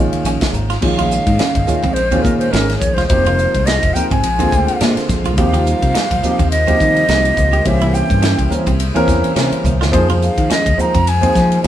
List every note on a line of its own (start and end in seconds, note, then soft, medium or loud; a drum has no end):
0.00 0.71 A#2 medium
0.00 0.71 D#3 medium
0.00 0.71 G#3 medium
0.00 0.72 C#4 medium
0.00 0.72 F4 medium
0.00 0.12 D#5 medium
0.12 0.24 F5 medium
0.12 muted fretless electric bass stroke soft
0.12 ride medium
0.12 high conga medium
0.24 0.37 A#1 medium
0.24 0.43 C#4 medium
0.24 0.52 G#5 medium
0.24 hi-hat pedal medium
0.24 ride medium
0.41 kick medium
0.41 snare loud
0.41 ride medium
0.41 high conga medium
0.53 0.76 G#1 medium
0.53 0.80 A#5 medium
0.53 hi-hat pedal medium
0.53 low conga medium
0.70 0.77 F4 medium
0.70 snare soft
0.70 ride medium
0.81 1.17 A#1 medium
0.81 0.96 A#2 medium
0.81 3.07 C#3 medium
0.81 0.96 D#3 medium
0.81 3.07 G#3 medium
0.81 0.96 G#3 medium
0.81 3.07 A#3 medium
0.81 0.96 C#4 medium
0.81 3.08 D#4 medium
0.81 0.96 F4 medium
0.81 1.95 F5 medium
0.81 kick medium
0.81 crash medium
0.98 1.59 A#2 medium
0.98 1.58 D#3 medium
0.98 1.59 G#3 medium
0.98 1.59 C#4 medium
0.98 1.15 F4 medium
0.98 1.59 G#4 medium
0.98 ride medium
0.98 high conga medium
1.11 hi-hat pedal medium
1.27 1.37 G#2 medium
1.27 kick medium
1.27 ride medium
1.39 1.56 C#4 medium
1.39 muted fretless electric bass stroke soft
1.39 snare loud
1.39 ride medium
1.55 1.65 G#1 medium
1.55 kick medium
1.55 ride medium
1.67 1.81 A#2 medium
1.67 1.81 D#3 medium
1.67 1.81 G#3 medium
1.67 1.81 C#4 medium
1.67 1.82 F4 medium
1.67 muted fretless electric bass stroke soft
1.67 hi-hat pedal medium
1.67 low conga medium
1.83 2.16 A#1 medium
1.83 2.00 C4 medium
1.83 1.90 C#4 soft
1.83 1.90 F4 soft
1.83 kick medium
1.83 ride medium
1.83 high conga medium
1.94 2.24 C5 medium
1.94 ride medium
2.11 2.47 A#2 medium
2.11 2.48 D#3 medium
2.11 2.48 G#3 medium
2.11 2.29 C4 medium
2.11 2.48 C#4 medium
2.11 2.48 F4 loud
2.11 ride medium
2.11 low conga medium
2.22 2.47 A#2 medium
2.22 2.38 A#4 medium
2.22 kick medium
2.22 hi-hat pedal medium
2.22 high conga medium
2.38 2.53 C5 medium
2.38 ride medium
2.51 2.75 G#1 medium
2.51 3.02 A#2 medium
2.51 3.03 D#3 medium
2.51 3.03 G#3 medium
2.51 2.69 C#4 medium
2.51 3.03 C#4 medium
2.51 3.03 G#4 medium
2.51 2.77 A#4 medium
2.51 snare loud
2.51 ride medium
2.69 snare soft
2.69 ride medium
2.78 3.04 A#1 medium
2.78 2.95 C#5 medium
2.78 kick medium
2.78 hi-hat pedal medium
2.78 low conga medium
2.94 3.05 F4 medium
2.94 3.07 C5 medium
2.94 ride medium
2.94 high conga medium
2.99 snare soft
3.07 3.45 F1 medium
3.07 3.24 C3 medium
3.07 4.23 D#3 medium
3.07 4.23 F3 medium
3.07 3.24 F3 medium
3.07 5.35 G#3 medium
3.07 3.24 A#3 medium
3.07 3.24 D#4 medium
3.07 7.61 F4 medium
3.07 3.24 G4 medium
3.07 3.68 C5 medium
3.07 11.67 C5 medium
3.07 kick loud
3.07 ride medium
3.25 3.86 C3 medium
3.25 3.87 F3 medium
3.25 3.87 A#3 medium
3.25 3.87 D#4 medium
3.25 3.43 F4 medium
3.25 3.87 A#4 medium
3.25 ride medium
3.25 high conga medium
3.39 hi-hat pedal medium
3.55 3.77 C2 medium
3.55 kick medium
3.55 ride medium
3.66 3.84 D4 medium
3.66 3.95 D#5 medium
3.66 snare loud
3.66 ride medium
3.83 3.93 F1 medium
3.83 kick medium
3.83 ride medium
3.94 4.09 C3 medium
3.94 4.09 F3 medium
3.94 4.10 A#3 medium
3.94 4.09 D#4 medium
3.94 4.10 A#4 medium
3.94 4.10 G5 medium
3.94 hi-hat pedal medium
3.94 low conga medium
4.10 4.21 G#1 medium
4.10 4.28 C4 medium
4.10 4.17 D#4 soft
4.10 4.18 F4 soft
4.10 4.92 G#5 medium
4.10 kick medium
4.10 ride medium
4.10 high conga medium
4.23 4.46 A#1 loud
4.23 5.37 D3 medium
4.23 9.89 A#3 medium
4.23 ride medium
4.39 4.75 D3 medium
4.39 4.75 G#3 medium
4.39 4.76 A#3 medium
4.39 4.56 C4 medium
4.39 4.76 C4 medium
4.39 4.76 F4 loud
4.39 ride medium
4.39 low conga medium
4.52 4.65 D2 medium
4.52 kick medium
4.52 hi-hat pedal medium
4.52 high conga medium
4.68 muted fretless electric bass stroke soft
4.68 ride medium
4.80 4.94 A#2 medium
4.80 5.30 D3 medium
4.80 5.31 G#3 medium
4.80 5.31 A#3 medium
4.80 5.31 C4 medium
4.80 4.98 D4 medium
4.80 5.31 F4 medium
4.80 snare loud
4.80 ride medium
4.97 muted fretless electric bass stroke soft
4.97 snare soft
4.97 ride medium
5.09 5.38 A#1 loud
5.09 kick medium
5.09 snare soft
5.09 hi-hat pedal medium
5.09 low conga medium
5.24 5.33 F4 medium
5.24 ride medium
5.24 high conga medium
5.37 5.73 D#2 loud
5.37 5.51 C3 medium
5.37 7.63 D#3 medium
5.37 5.51 F3 medium
5.37 9.89 G3 medium
5.37 5.52 A#3 medium
5.37 5.52 D#4 medium
5.37 5.52 G4 loud
5.37 6.48 F5 medium
5.37 kick loud
5.37 ride medium
5.53 6.14 C3 medium
5.53 6.14 F3 medium
5.53 6.14 A#3 medium
5.53 6.15 D#4 medium
5.53 6.15 F4 medium
5.53 5.70 G4 medium
5.53 ride medium
5.53 high conga medium
5.66 hi-hat pedal medium
5.82 5.92 C3 medium
5.82 kick medium
5.82 ride medium
5.95 6.11 D#4 medium
5.95 muted fretless electric bass stroke soft
5.95 snare loud
5.95 ride medium
6.11 6.21 C2 medium
6.11 kick medium
6.11 ride medium
6.23 6.37 C3 medium
6.23 6.37 F3 medium
6.23 6.38 A#3 medium
6.23 6.37 D#4 medium
6.23 6.38 G4 medium
6.23 muted fretless electric bass stroke soft
6.23 hi-hat pedal medium
6.23 low conga medium
6.39 6.71 D#2 medium
6.39 6.56 C4 medium
6.39 6.45 D#4 soft
6.39 6.46 A#4 soft
6.39 kick medium
6.39 ride medium
6.39 high conga medium
6.51 7.68 D#5 medium
6.51 ride medium
6.67 7.03 C3 medium
6.67 7.03 F3 medium
6.67 7.03 A#3 medium
6.67 6.84 C4 medium
6.67 7.04 D#4 medium
6.67 7.04 G4 medium
6.67 ride medium
6.67 low conga medium
6.80 7.03 D#3 medium
6.80 kick medium
6.80 hi-hat pedal medium
6.80 high conga medium
6.96 ride medium
7.08 7.31 C2 medium
7.08 7.58 C3 medium
7.08 7.59 F3 medium
7.08 7.59 A#3 medium
7.08 7.26 D#4 medium
7.08 7.59 D#4 medium
7.08 7.59 G4 medium
7.08 snare loud
7.08 ride medium
7.25 ride medium
7.37 7.59 C#2 medium
7.37 kick medium
7.37 hi-hat pedal medium
7.37 low conga medium
7.52 7.60 G4 medium
7.52 ride medium
7.52 high conga medium
7.65 8.00 C2 medium
7.65 9.90 C#3 medium
7.65 7.79 E3 medium
7.65 7.79 A#3 medium
7.65 7.79 C4 medium
7.65 7.79 C#4 medium
7.65 9.90 E4 medium
7.65 7.79 G4 medium
7.65 7.96 E5 medium
7.65 kick medium
7.65 ride medium
7.81 8.41 E3 medium
7.81 8.41 A#3 medium
7.81 8.42 C4 medium
7.81 8.42 C#4 medium
7.81 7.98 E4 medium
7.81 8.42 G4 medium
7.81 ride medium
7.81 high conga medium
7.94 8.51 G5 medium
7.94 hi-hat pedal medium
8.10 8.32 G2 medium
8.10 kick medium
8.10 ride medium
8.22 8.39 C#4 medium
8.22 snare loud
8.22 ride medium
8.39 8.48 C2 medium
8.39 kick medium
8.39 ride medium
8.50 8.64 E3 medium
8.50 8.64 A#3 medium
8.50 8.64 C4 medium
8.50 8.64 C#4 medium
8.50 8.64 A#4 medium
8.50 hi-hat pedal medium
8.50 low conga medium
8.66 8.89 C2 medium
8.66 8.84 C4 medium
8.66 8.72 C#4 soft
8.66 8.73 G4 soft
8.66 kick medium
8.66 ride medium
8.66 high conga medium
8.80 ride medium
8.95 9.30 E3 loud
8.95 9.30 A#3 medium
8.95 9.31 C4 medium
8.95 9.12 C4 medium
8.95 9.31 C#4 medium
8.95 9.31 A#4 loud
8.95 ride medium
8.95 low conga medium
9.08 9.20 E2 medium
9.08 kick medium
9.08 snare soft
9.08 hi-hat pedal medium
9.08 high conga medium
9.24 muted fretless electric bass stroke soft
9.24 ride medium
9.35 9.48 C3 medium
9.35 9.85 E3 medium
9.35 9.85 A#3 medium
9.35 9.86 C4 medium
9.35 9.86 C#4 medium
9.35 9.53 C#4 medium
9.35 9.86 A#4 medium
9.35 snare medium
9.35 ride medium
9.51 muted fretless electric bass stroke soft
9.51 ride medium
9.64 9.93 C2 medium
9.64 hi-hat pedal medium
9.64 high tom medium
9.64 low conga medium
9.81 9.88 F4 medium
9.81 snare medium
9.81 high conga medium
9.92 10.28 F2 medium
9.92 11.67 D#3 medium
9.92 10.06 F3 loud
9.92 11.67 F3 medium
9.92 11.67 G#3 medium
9.92 10.06 A#3 medium
9.92 10.06 D#4 medium
9.92 11.67 F4 medium
9.92 10.07 G#4 medium
9.92 10.07 C5 loud
9.92 kick medium
9.92 ride medium
10.08 10.69 F3 medium
10.08 10.69 A#3 medium
10.08 10.69 D#4 medium
10.08 10.26 F4 medium
10.08 10.69 G#4 medium
10.08 10.69 C5 medium
10.08 ride medium
10.08 high conga medium
10.22 10.53 F5 medium
10.22 hi-hat pedal medium
10.38 10.47 D#3 medium
10.38 kick medium
10.38 ride medium
10.50 10.66 C#4 medium
10.50 10.82 D#5 medium
10.50 muted fretless electric bass stroke soft
10.50 snare loud
10.50 ride medium
10.66 10.76 D#2 medium
10.66 kick medium
10.66 ride medium
10.77 10.91 F3 medium
10.77 10.91 A#3 medium
10.77 10.91 D#4 medium
10.77 10.92 G#4 medium
10.77 10.92 C5 medium
10.77 11.10 A#5 medium
10.77 muted fretless electric bass stroke soft
10.77 hi-hat pedal medium
10.77 low conga medium
10.94 11.26 F2 medium
10.94 11.11 C4 medium
10.94 11.00 G#4 soft
10.94 11.01 C5 soft
10.94 kick medium
10.94 ride medium
10.94 high conga medium
11.07 11.63 G#5 loud
11.07 ride medium
11.21 11.57 F3 medium
11.21 11.57 A#3 medium
11.21 11.39 C4 medium
11.21 11.58 D#4 medium
11.21 11.58 G#4 medium
11.21 11.58 C5 loud
11.21 ride medium
11.21 low conga medium
11.35 11.58 F3 medium
11.35 kick medium
11.35 snare soft
11.35 hi-hat pedal medium
11.35 high conga medium
11.52 ride medium
11.62 11.67 F3 medium
11.62 11.67 A#3 medium
11.62 11.67 D#4 medium
11.62 11.67 G#4 medium
11.62 11.67 D#5 medium
11.62 11.67 G#5 loud